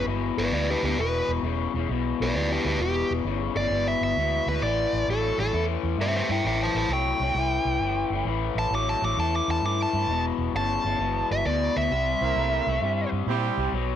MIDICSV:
0, 0, Header, 1, 5, 480
1, 0, Start_track
1, 0, Key_signature, 1, "minor"
1, 0, Tempo, 455581
1, 1033, Time_signature, 4, 2, 24, 8
1, 14704, End_track
2, 0, Start_track
2, 0, Title_t, "Lead electric guitar"
2, 0, Program_c, 0, 29
2, 403, Note_on_c, 0, 71, 68
2, 411, Note_on_c, 0, 74, 74
2, 556, Note_off_c, 0, 74, 0
2, 559, Note_off_c, 0, 71, 0
2, 571, Note_on_c, 0, 71, 78
2, 577, Note_on_c, 0, 74, 86
2, 711, Note_off_c, 0, 71, 0
2, 720, Note_off_c, 0, 74, 0
2, 740, Note_on_c, 0, 67, 65
2, 746, Note_on_c, 0, 71, 76
2, 873, Note_off_c, 0, 67, 0
2, 885, Note_off_c, 0, 71, 0
2, 886, Note_on_c, 0, 67, 72
2, 899, Note_on_c, 0, 71, 77
2, 1029, Note_off_c, 0, 67, 0
2, 1041, Note_off_c, 0, 71, 0
2, 1063, Note_on_c, 0, 71, 84
2, 1363, Note_off_c, 0, 71, 0
2, 2340, Note_on_c, 0, 71, 70
2, 2346, Note_on_c, 0, 74, 74
2, 2471, Note_off_c, 0, 71, 0
2, 2477, Note_off_c, 0, 74, 0
2, 2483, Note_on_c, 0, 71, 68
2, 2490, Note_on_c, 0, 74, 81
2, 2628, Note_off_c, 0, 71, 0
2, 2638, Note_off_c, 0, 74, 0
2, 2656, Note_on_c, 0, 67, 66
2, 2663, Note_on_c, 0, 71, 72
2, 2790, Note_off_c, 0, 67, 0
2, 2794, Note_off_c, 0, 71, 0
2, 2801, Note_on_c, 0, 67, 58
2, 2812, Note_on_c, 0, 71, 72
2, 2948, Note_off_c, 0, 67, 0
2, 2956, Note_off_c, 0, 71, 0
2, 2965, Note_on_c, 0, 67, 87
2, 3275, Note_off_c, 0, 67, 0
2, 3760, Note_on_c, 0, 74, 87
2, 4068, Note_off_c, 0, 74, 0
2, 4085, Note_on_c, 0, 76, 82
2, 4235, Note_off_c, 0, 76, 0
2, 4251, Note_on_c, 0, 76, 77
2, 4709, Note_off_c, 0, 76, 0
2, 4725, Note_on_c, 0, 71, 73
2, 4875, Note_off_c, 0, 71, 0
2, 4880, Note_on_c, 0, 74, 85
2, 5343, Note_off_c, 0, 74, 0
2, 5377, Note_on_c, 0, 69, 85
2, 5676, Note_off_c, 0, 69, 0
2, 5690, Note_on_c, 0, 69, 87
2, 5942, Note_off_c, 0, 69, 0
2, 6334, Note_on_c, 0, 72, 79
2, 6339, Note_on_c, 0, 76, 89
2, 6481, Note_off_c, 0, 72, 0
2, 6482, Note_off_c, 0, 76, 0
2, 6492, Note_on_c, 0, 72, 65
2, 6500, Note_on_c, 0, 76, 71
2, 6633, Note_off_c, 0, 72, 0
2, 6637, Note_off_c, 0, 76, 0
2, 6650, Note_on_c, 0, 76, 66
2, 6658, Note_on_c, 0, 79, 73
2, 6791, Note_off_c, 0, 76, 0
2, 6801, Note_off_c, 0, 79, 0
2, 6816, Note_on_c, 0, 76, 70
2, 6820, Note_on_c, 0, 79, 81
2, 6954, Note_off_c, 0, 76, 0
2, 6962, Note_off_c, 0, 79, 0
2, 6985, Note_on_c, 0, 72, 79
2, 6992, Note_on_c, 0, 81, 76
2, 7119, Note_off_c, 0, 72, 0
2, 7127, Note_off_c, 0, 81, 0
2, 7137, Note_on_c, 0, 72, 64
2, 7142, Note_on_c, 0, 81, 79
2, 7275, Note_off_c, 0, 72, 0
2, 7283, Note_off_c, 0, 81, 0
2, 7303, Note_on_c, 0, 79, 91
2, 8684, Note_off_c, 0, 79, 0
2, 9049, Note_on_c, 0, 81, 87
2, 9195, Note_off_c, 0, 81, 0
2, 9217, Note_on_c, 0, 86, 73
2, 9359, Note_off_c, 0, 86, 0
2, 9369, Note_on_c, 0, 81, 80
2, 9515, Note_off_c, 0, 81, 0
2, 9531, Note_on_c, 0, 86, 78
2, 9676, Note_off_c, 0, 86, 0
2, 9690, Note_on_c, 0, 81, 80
2, 9835, Note_off_c, 0, 81, 0
2, 9857, Note_on_c, 0, 86, 83
2, 9999, Note_off_c, 0, 86, 0
2, 10017, Note_on_c, 0, 81, 82
2, 10159, Note_off_c, 0, 81, 0
2, 10174, Note_on_c, 0, 86, 85
2, 10317, Note_off_c, 0, 86, 0
2, 10351, Note_on_c, 0, 81, 81
2, 10796, Note_off_c, 0, 81, 0
2, 11130, Note_on_c, 0, 81, 90
2, 11900, Note_off_c, 0, 81, 0
2, 11931, Note_on_c, 0, 76, 81
2, 12073, Note_off_c, 0, 76, 0
2, 12079, Note_on_c, 0, 74, 91
2, 12388, Note_off_c, 0, 74, 0
2, 12408, Note_on_c, 0, 76, 97
2, 13798, Note_off_c, 0, 76, 0
2, 14704, End_track
3, 0, Start_track
3, 0, Title_t, "Horn section"
3, 0, Program_c, 1, 61
3, 12863, Note_on_c, 1, 60, 73
3, 12871, Note_on_c, 1, 64, 69
3, 12878, Note_on_c, 1, 58, 73
3, 12878, Note_on_c, 1, 70, 79
3, 13410, Note_off_c, 1, 60, 0
3, 13414, Note_off_c, 1, 64, 0
3, 13417, Note_off_c, 1, 58, 0
3, 13417, Note_off_c, 1, 70, 0
3, 13986, Note_on_c, 1, 60, 81
3, 13993, Note_on_c, 1, 64, 77
3, 13996, Note_on_c, 1, 55, 95
3, 13996, Note_on_c, 1, 67, 103
3, 14436, Note_off_c, 1, 60, 0
3, 14439, Note_off_c, 1, 64, 0
3, 14441, Note_off_c, 1, 55, 0
3, 14441, Note_off_c, 1, 67, 0
3, 14704, End_track
4, 0, Start_track
4, 0, Title_t, "Overdriven electric guitar"
4, 0, Program_c, 2, 29
4, 75, Note_on_c, 2, 40, 75
4, 82, Note_on_c, 2, 47, 85
4, 523, Note_off_c, 2, 40, 0
4, 526, Note_off_c, 2, 47, 0
4, 560, Note_on_c, 2, 40, 76
4, 562, Note_on_c, 2, 47, 84
4, 849, Note_off_c, 2, 40, 0
4, 850, Note_off_c, 2, 47, 0
4, 882, Note_on_c, 2, 40, 66
4, 886, Note_on_c, 2, 47, 76
4, 1020, Note_off_c, 2, 40, 0
4, 1022, Note_off_c, 2, 47, 0
4, 1037, Note_on_c, 2, 40, 76
4, 1039, Note_on_c, 2, 47, 91
4, 1484, Note_off_c, 2, 40, 0
4, 1485, Note_off_c, 2, 47, 0
4, 1513, Note_on_c, 2, 40, 80
4, 1517, Note_on_c, 2, 49, 85
4, 1806, Note_off_c, 2, 40, 0
4, 1807, Note_off_c, 2, 49, 0
4, 1845, Note_on_c, 2, 40, 66
4, 1848, Note_on_c, 2, 49, 79
4, 1981, Note_off_c, 2, 40, 0
4, 1983, Note_off_c, 2, 49, 0
4, 2003, Note_on_c, 2, 40, 71
4, 2012, Note_on_c, 2, 47, 78
4, 2447, Note_off_c, 2, 40, 0
4, 2452, Note_off_c, 2, 47, 0
4, 2488, Note_on_c, 2, 40, 80
4, 2491, Note_on_c, 2, 47, 88
4, 2773, Note_off_c, 2, 40, 0
4, 2775, Note_off_c, 2, 47, 0
4, 2804, Note_on_c, 2, 40, 60
4, 2811, Note_on_c, 2, 47, 71
4, 2942, Note_off_c, 2, 40, 0
4, 2945, Note_off_c, 2, 47, 0
4, 2958, Note_on_c, 2, 40, 75
4, 2963, Note_on_c, 2, 47, 96
4, 3405, Note_off_c, 2, 40, 0
4, 3408, Note_off_c, 2, 47, 0
4, 3436, Note_on_c, 2, 40, 77
4, 3443, Note_on_c, 2, 49, 92
4, 3727, Note_off_c, 2, 40, 0
4, 3731, Note_off_c, 2, 49, 0
4, 3770, Note_on_c, 2, 40, 64
4, 3780, Note_on_c, 2, 49, 71
4, 3905, Note_off_c, 2, 40, 0
4, 3909, Note_off_c, 2, 49, 0
4, 3920, Note_on_c, 2, 40, 69
4, 3928, Note_on_c, 2, 47, 86
4, 4366, Note_off_c, 2, 40, 0
4, 4370, Note_off_c, 2, 47, 0
4, 4406, Note_on_c, 2, 40, 75
4, 4408, Note_on_c, 2, 47, 88
4, 4693, Note_off_c, 2, 40, 0
4, 4694, Note_off_c, 2, 47, 0
4, 4732, Note_on_c, 2, 40, 60
4, 4739, Note_on_c, 2, 47, 67
4, 4866, Note_off_c, 2, 40, 0
4, 4869, Note_off_c, 2, 47, 0
4, 4883, Note_on_c, 2, 45, 71
4, 4893, Note_on_c, 2, 52, 87
4, 5328, Note_off_c, 2, 45, 0
4, 5333, Note_off_c, 2, 52, 0
4, 5368, Note_on_c, 2, 45, 74
4, 5372, Note_on_c, 2, 54, 92
4, 5653, Note_off_c, 2, 45, 0
4, 5655, Note_off_c, 2, 54, 0
4, 5686, Note_on_c, 2, 45, 67
4, 5690, Note_on_c, 2, 54, 68
4, 5822, Note_off_c, 2, 45, 0
4, 5824, Note_off_c, 2, 54, 0
4, 5840, Note_on_c, 2, 45, 74
4, 5841, Note_on_c, 2, 52, 86
4, 6286, Note_off_c, 2, 45, 0
4, 6286, Note_off_c, 2, 52, 0
4, 6314, Note_on_c, 2, 45, 81
4, 6316, Note_on_c, 2, 52, 83
4, 6606, Note_off_c, 2, 45, 0
4, 6607, Note_off_c, 2, 52, 0
4, 6636, Note_on_c, 2, 45, 58
4, 6646, Note_on_c, 2, 52, 70
4, 6777, Note_off_c, 2, 45, 0
4, 6782, Note_off_c, 2, 52, 0
4, 6795, Note_on_c, 2, 45, 77
4, 6804, Note_on_c, 2, 52, 87
4, 7243, Note_off_c, 2, 45, 0
4, 7247, Note_off_c, 2, 52, 0
4, 7272, Note_on_c, 2, 45, 77
4, 7283, Note_on_c, 2, 54, 80
4, 7564, Note_off_c, 2, 45, 0
4, 7570, Note_off_c, 2, 54, 0
4, 7602, Note_on_c, 2, 45, 65
4, 7606, Note_on_c, 2, 54, 80
4, 7739, Note_off_c, 2, 45, 0
4, 7741, Note_off_c, 2, 54, 0
4, 7758, Note_on_c, 2, 45, 69
4, 7767, Note_on_c, 2, 52, 79
4, 8204, Note_off_c, 2, 45, 0
4, 8208, Note_off_c, 2, 52, 0
4, 8241, Note_on_c, 2, 45, 75
4, 8247, Note_on_c, 2, 52, 86
4, 8528, Note_off_c, 2, 45, 0
4, 8531, Note_off_c, 2, 52, 0
4, 8561, Note_on_c, 2, 45, 68
4, 8569, Note_on_c, 2, 52, 72
4, 8698, Note_off_c, 2, 45, 0
4, 8702, Note_off_c, 2, 52, 0
4, 8712, Note_on_c, 2, 45, 80
4, 8719, Note_on_c, 2, 52, 91
4, 9160, Note_off_c, 2, 45, 0
4, 9163, Note_off_c, 2, 52, 0
4, 9195, Note_on_c, 2, 45, 72
4, 9203, Note_on_c, 2, 54, 87
4, 9485, Note_off_c, 2, 45, 0
4, 9488, Note_off_c, 2, 54, 0
4, 9517, Note_on_c, 2, 45, 70
4, 9525, Note_on_c, 2, 54, 70
4, 9656, Note_off_c, 2, 45, 0
4, 9660, Note_off_c, 2, 54, 0
4, 9679, Note_on_c, 2, 45, 79
4, 9681, Note_on_c, 2, 52, 87
4, 10123, Note_off_c, 2, 45, 0
4, 10124, Note_off_c, 2, 52, 0
4, 10160, Note_on_c, 2, 45, 80
4, 10165, Note_on_c, 2, 52, 100
4, 10446, Note_off_c, 2, 45, 0
4, 10449, Note_off_c, 2, 52, 0
4, 10475, Note_on_c, 2, 45, 63
4, 10482, Note_on_c, 2, 52, 69
4, 10614, Note_off_c, 2, 45, 0
4, 10618, Note_off_c, 2, 52, 0
4, 10639, Note_on_c, 2, 40, 79
4, 10642, Note_on_c, 2, 47, 84
4, 11083, Note_off_c, 2, 40, 0
4, 11084, Note_off_c, 2, 47, 0
4, 11113, Note_on_c, 2, 40, 81
4, 11118, Note_on_c, 2, 49, 89
4, 11403, Note_off_c, 2, 40, 0
4, 11405, Note_off_c, 2, 49, 0
4, 11441, Note_on_c, 2, 40, 64
4, 11443, Note_on_c, 2, 49, 74
4, 11573, Note_off_c, 2, 40, 0
4, 11578, Note_off_c, 2, 49, 0
4, 11586, Note_on_c, 2, 40, 72
4, 11591, Note_on_c, 2, 47, 75
4, 12036, Note_off_c, 2, 40, 0
4, 12038, Note_off_c, 2, 47, 0
4, 12072, Note_on_c, 2, 40, 83
4, 12076, Note_on_c, 2, 47, 89
4, 12362, Note_off_c, 2, 40, 0
4, 12364, Note_off_c, 2, 47, 0
4, 12383, Note_on_c, 2, 40, 61
4, 12391, Note_on_c, 2, 47, 66
4, 12527, Note_off_c, 2, 40, 0
4, 12532, Note_off_c, 2, 47, 0
4, 12548, Note_on_c, 2, 48, 80
4, 12556, Note_on_c, 2, 55, 83
4, 12997, Note_off_c, 2, 48, 0
4, 13001, Note_off_c, 2, 55, 0
4, 13030, Note_on_c, 2, 48, 80
4, 13035, Note_on_c, 2, 57, 90
4, 13321, Note_off_c, 2, 48, 0
4, 13324, Note_off_c, 2, 57, 0
4, 13363, Note_on_c, 2, 48, 66
4, 13367, Note_on_c, 2, 57, 72
4, 13497, Note_off_c, 2, 48, 0
4, 13500, Note_off_c, 2, 57, 0
4, 13514, Note_on_c, 2, 48, 74
4, 13521, Note_on_c, 2, 55, 90
4, 13960, Note_off_c, 2, 48, 0
4, 13963, Note_off_c, 2, 55, 0
4, 14003, Note_on_c, 2, 48, 79
4, 14008, Note_on_c, 2, 55, 95
4, 14288, Note_off_c, 2, 48, 0
4, 14290, Note_off_c, 2, 55, 0
4, 14323, Note_on_c, 2, 48, 62
4, 14326, Note_on_c, 2, 55, 72
4, 14458, Note_off_c, 2, 48, 0
4, 14459, Note_off_c, 2, 55, 0
4, 14477, Note_on_c, 2, 47, 77
4, 14483, Note_on_c, 2, 54, 97
4, 14704, Note_off_c, 2, 47, 0
4, 14704, Note_off_c, 2, 54, 0
4, 14704, End_track
5, 0, Start_track
5, 0, Title_t, "Fingered electric bass"
5, 0, Program_c, 3, 33
5, 61, Note_on_c, 3, 31, 89
5, 302, Note_off_c, 3, 31, 0
5, 390, Note_on_c, 3, 31, 81
5, 506, Note_off_c, 3, 31, 0
5, 542, Note_on_c, 3, 38, 74
5, 783, Note_off_c, 3, 38, 0
5, 870, Note_on_c, 3, 38, 78
5, 986, Note_off_c, 3, 38, 0
5, 1030, Note_on_c, 3, 28, 77
5, 1268, Note_off_c, 3, 28, 0
5, 1353, Note_on_c, 3, 28, 83
5, 1468, Note_off_c, 3, 28, 0
5, 1502, Note_on_c, 3, 28, 87
5, 1743, Note_off_c, 3, 28, 0
5, 1834, Note_on_c, 3, 28, 77
5, 1949, Note_off_c, 3, 28, 0
5, 1994, Note_on_c, 3, 35, 89
5, 2231, Note_off_c, 3, 35, 0
5, 2318, Note_on_c, 3, 35, 81
5, 2432, Note_off_c, 3, 35, 0
5, 2471, Note_on_c, 3, 38, 79
5, 2709, Note_off_c, 3, 38, 0
5, 2788, Note_on_c, 3, 38, 80
5, 2905, Note_off_c, 3, 38, 0
5, 2936, Note_on_c, 3, 28, 83
5, 3179, Note_off_c, 3, 28, 0
5, 3270, Note_on_c, 3, 28, 74
5, 3387, Note_off_c, 3, 28, 0
5, 3418, Note_on_c, 3, 31, 83
5, 3661, Note_off_c, 3, 31, 0
5, 3741, Note_on_c, 3, 31, 76
5, 3861, Note_off_c, 3, 31, 0
5, 3901, Note_on_c, 3, 31, 81
5, 4143, Note_off_c, 3, 31, 0
5, 4224, Note_on_c, 3, 31, 73
5, 4343, Note_off_c, 3, 31, 0
5, 4384, Note_on_c, 3, 38, 74
5, 4624, Note_off_c, 3, 38, 0
5, 4703, Note_on_c, 3, 38, 78
5, 4823, Note_off_c, 3, 38, 0
5, 4863, Note_on_c, 3, 33, 82
5, 5104, Note_off_c, 3, 33, 0
5, 5193, Note_on_c, 3, 33, 73
5, 5308, Note_off_c, 3, 33, 0
5, 5350, Note_on_c, 3, 33, 86
5, 5588, Note_off_c, 3, 33, 0
5, 5669, Note_on_c, 3, 33, 73
5, 5786, Note_off_c, 3, 33, 0
5, 5828, Note_on_c, 3, 40, 90
5, 6066, Note_off_c, 3, 40, 0
5, 6145, Note_on_c, 3, 40, 82
5, 6263, Note_off_c, 3, 40, 0
5, 6296, Note_on_c, 3, 43, 83
5, 6539, Note_off_c, 3, 43, 0
5, 6627, Note_on_c, 3, 43, 86
5, 6745, Note_off_c, 3, 43, 0
5, 6790, Note_on_c, 3, 33, 82
5, 7028, Note_off_c, 3, 33, 0
5, 7107, Note_on_c, 3, 33, 84
5, 7224, Note_off_c, 3, 33, 0
5, 7257, Note_on_c, 3, 36, 84
5, 7499, Note_off_c, 3, 36, 0
5, 7582, Note_on_c, 3, 36, 80
5, 7701, Note_off_c, 3, 36, 0
5, 7738, Note_on_c, 3, 36, 94
5, 7980, Note_off_c, 3, 36, 0
5, 8060, Note_on_c, 3, 36, 83
5, 8179, Note_off_c, 3, 36, 0
5, 8207, Note_on_c, 3, 31, 81
5, 8453, Note_off_c, 3, 31, 0
5, 8534, Note_on_c, 3, 31, 84
5, 8655, Note_off_c, 3, 31, 0
5, 8692, Note_on_c, 3, 33, 87
5, 8935, Note_off_c, 3, 33, 0
5, 9009, Note_on_c, 3, 33, 80
5, 9132, Note_off_c, 3, 33, 0
5, 9172, Note_on_c, 3, 33, 90
5, 9415, Note_off_c, 3, 33, 0
5, 9502, Note_on_c, 3, 33, 75
5, 9620, Note_off_c, 3, 33, 0
5, 9664, Note_on_c, 3, 40, 91
5, 9903, Note_off_c, 3, 40, 0
5, 9987, Note_on_c, 3, 40, 79
5, 10103, Note_off_c, 3, 40, 0
5, 10137, Note_on_c, 3, 43, 82
5, 10378, Note_off_c, 3, 43, 0
5, 10465, Note_on_c, 3, 43, 88
5, 10581, Note_off_c, 3, 43, 0
5, 10610, Note_on_c, 3, 28, 81
5, 10854, Note_off_c, 3, 28, 0
5, 10939, Note_on_c, 3, 28, 84
5, 11058, Note_off_c, 3, 28, 0
5, 11097, Note_on_c, 3, 31, 84
5, 11338, Note_off_c, 3, 31, 0
5, 11424, Note_on_c, 3, 31, 75
5, 11540, Note_off_c, 3, 31, 0
5, 11576, Note_on_c, 3, 31, 86
5, 11817, Note_off_c, 3, 31, 0
5, 11911, Note_on_c, 3, 31, 77
5, 12025, Note_off_c, 3, 31, 0
5, 12066, Note_on_c, 3, 38, 82
5, 12303, Note_off_c, 3, 38, 0
5, 12394, Note_on_c, 3, 38, 84
5, 12507, Note_off_c, 3, 38, 0
5, 12545, Note_on_c, 3, 36, 90
5, 12783, Note_off_c, 3, 36, 0
5, 12864, Note_on_c, 3, 36, 81
5, 12980, Note_off_c, 3, 36, 0
5, 13023, Note_on_c, 3, 36, 86
5, 13262, Note_off_c, 3, 36, 0
5, 13343, Note_on_c, 3, 36, 79
5, 13460, Note_off_c, 3, 36, 0
5, 13501, Note_on_c, 3, 43, 92
5, 13740, Note_off_c, 3, 43, 0
5, 13824, Note_on_c, 3, 43, 85
5, 13940, Note_off_c, 3, 43, 0
5, 13975, Note_on_c, 3, 46, 79
5, 14216, Note_off_c, 3, 46, 0
5, 14299, Note_on_c, 3, 36, 87
5, 14417, Note_off_c, 3, 36, 0
5, 14455, Note_on_c, 3, 35, 87
5, 14696, Note_off_c, 3, 35, 0
5, 14704, End_track
0, 0, End_of_file